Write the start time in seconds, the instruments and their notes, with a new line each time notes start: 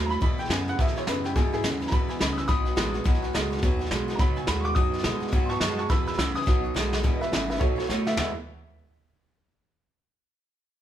Already playing: upright bass D#2, clean electric guitar A2 F#3, steel-string acoustic guitar A3
0.06 steel-string acoustic guitar E4, upright piano A#5
0.10 steel-string acoustic guitar A3 C#4, upright piano B5, snare
0.20 steel-string acoustic guitar E2 B2 E3 G#3 B3 E4, upright bass E2, upright piano B5, kick, snare
0.38 steel-string acoustic guitar E3 G#3 B3 E4, upright piano G5, snare
0.45 snare
0.49 clean electric guitar E2 C#3, upright bass F#2, steel-string acoustic guitar E3 G#3 B3 E4, upright piano G#5, snare, hi-hat pedal
0.68 steel-string acoustic guitar E3 G#3 B3 E4, upright piano F#5, snare
0.79 steel-string acoustic guitar E2 B2 E3 G#3 B3 E4, upright bass E2, upright piano E5, kick, snare
0.88 snare
0.96 steel-string acoustic guitar E3 G#3 B3 E4, upright piano C#5, snare
1.07 clean electric guitar E2 C#3, upright bass F#2, steel-string acoustic guitar E3 G#3 B3 E4, upright piano B4, snare, hi-hat pedal
1.24 steel-string acoustic guitar E3 G#3 B3 E4, upright piano G4, snare
1.35 steel-string acoustic guitar E2 B2 E3 G#3 B3 E4, upright bass G#2, upright piano G#4, kick, snare
1.52 steel-string acoustic guitar E3 G#3 B3 E4, upright piano E4 G#4, snare
1.63 upright bass D#2, clean electric guitar E2 C#3, steel-string acoustic guitar E3 G#3 B3 E4, snare, hi-hat pedal
1.80 steel-string acoustic guitar E3 G#3 B3 E4, snare
1.87 upright piano A#5, snare
1.91 steel-string acoustic guitar E2 B2 E3 G#3 B3 E4, upright bass E2, upright piano B5, kick, snare
2.08 steel-string acoustic guitar E3 G#3 B3 E4, upright piano G#5, snare
2.19 upright bass C#2, clean electric guitar E2 C#3, steel-string acoustic guitar E3 G#3 B3 E4, upright piano B5, snare, hi-hat pedal
2.33 steel-string acoustic guitar B3 E4, upright piano D#6
2.37 steel-string acoustic guitar E3 G#3, upright piano E6, snare
2.48 upright bass B1, steel-string acoustic guitar B2 F#3 B3 D#4 F#4, upright piano B5 D#6, kick, snare
2.65 steel-string acoustic guitar B3 D#4 F#4, snare
2.76 upright bass A1, clean electric guitar B2 G#3, steel-string acoustic guitar F#3 B3 D#4 F#4, snare, hi-hat pedal
2.94 steel-string acoustic guitar B3 D#4 F#4, snare
3.04 upright bass B1, steel-string acoustic guitar B2 F#3 B3 D#4 F#4, kick, snare
3.14 snare
3.22 steel-string acoustic guitar B3 D#4 F#4, snare
3.33 upright bass C#2, clean electric guitar B2 G#3, steel-string acoustic guitar F#3 B3 D#4 F#4, snare, hi-hat pedal
3.50 steel-string acoustic guitar B3 D#4 F#4, snare
3.57 snare
3.62 upright bass D#2, steel-string acoustic guitar B2 F#3 B3 D#4 F#4, kick, snare
3.79 steel-string acoustic guitar B3 D#4 F#4, snare
3.86 snare
3.91 upright bass B1, clean electric guitar B2 G#3, steel-string acoustic guitar F#3 B3 D#4 F#4, snare, hi-hat pedal
4.08 steel-string acoustic guitar B3 D#4 F#4, snare
4.15 steel-string acoustic guitar B2, upright piano A#5
4.19 upright bass C#2, steel-string acoustic guitar F#3 B3 D#4 F#4, upright piano B5, kick, snare
4.36 steel-string acoustic guitar B3 D#4 F#4, upright piano G#5, snare
4.47 upright bass D#2, clean electric guitar B2 G#3, steel-string acoustic guitar F#3 B3 D#4 F#4, upright piano B5, snare, hi-hat pedal
4.61 steel-string acoustic guitar F#4, upright piano C#6, snare
4.65 steel-string acoustic guitar B3 D#4, upright piano D6
4.75 upright bass F#2, steel-string acoustic guitar B2 F#3 B3 D#4 F#4, upright piano D#6, kick, snare
4.92 steel-string acoustic guitar B3 D#4 F#4, snare
4.98 snare
5.02 clean electric guitar B2 G#3, upright bass B2, steel-string acoustic guitar F#3 B3 D#4 F#4, snare, hi-hat pedal
5.20 steel-string acoustic guitar B3 D#4 F#4, muted upright bass stroke, snare
5.28 snare
5.32 upright bass G#2, steel-string acoustic guitar B2 F#3 B3 D#4 F#4, kick, snare
5.45 steel-string acoustic guitar F#4, upright piano A5 C6
5.50 steel-string acoustic guitar B3 D#4, upright piano C#6, snare
5.60 upright bass F#2, clean electric guitar B2 G#3, steel-string acoustic guitar F#3 B3 D#4 F#4, upright piano A5 C#6, snare, hi-hat pedal
5.77 steel-string acoustic guitar B3 D#4 F#4, upright piano A5 C#6, snare
5.89 steel-string acoustic guitar E2 B2 E3 B3 E4 G#4, upright bass E2, upright piano B5 E6, kick, snare
6.06 steel-string acoustic guitar E3 B3 E4 G#4, upright piano B5 E6, snare
6.13 snare
6.18 upright bass C#2, clean electric guitar E2 C#3, steel-string acoustic guitar E3 B3 E4 G#4, upright piano B5 E6, snare, hi-hat pedal
6.35 steel-string acoustic guitar E3 B3 E4 G#4, upright piano D#6, muted upright bass stroke, snare
6.42 snare
6.46 upright bass B1, steel-string acoustic guitar B2 F#3 B3 D#4 F#4, kick, snare
6.64 steel-string acoustic guitar B3 D#4 F#4
6.74 upright bass B1, clean electric guitar B2 G#3, steel-string acoustic guitar F#3 B3 D#4 F#4, snare, hi-hat pedal
6.92 steel-string acoustic guitar B3 D#4 F#4, snare
7.03 upright bass E1, steel-string acoustic guitar E2 B2 E3 B3 E4 G#4, kick, snare
7.17 steel-string acoustic guitar G#4, upright piano B4 D#5
7.21 steel-string acoustic guitar E3 B3 E4, upright piano E5, snare
7.32 upright bass G#1, clean electric guitar E2 C#3, steel-string acoustic guitar E3 B3 E4 G#4, upright piano B4 E5, snare, hi-hat pedal
7.49 steel-string acoustic guitar E3 B3 E4 G#4, upright piano B4 E5, snare
7.56 steel-string acoustic guitar B2, upright piano A4, snare
7.60 upright bass B1, steel-string acoustic guitar F#3 B3 D#4 F#4, upright piano C#5, kick, snare
7.76 steel-string acoustic guitar B3 D#4 F#4, upright piano A4 C#5, snare
7.84 steel-string acoustic guitar F#3, snare
7.89 upright bass D#2, clean electric guitar B2 A3, steel-string acoustic guitar B3 D#4 F#4, upright piano A4 C#5, snare, hi-hat pedal
8.05 steel-string acoustic guitar B3 D#4 F#4, upright piano E5, snare
8.16 upright bass E2, steel-string acoustic guitar E2 B2 E3 B3 E4 G#4, clean electric guitar G#3, upright piano E5, snare, floor tom, ride bell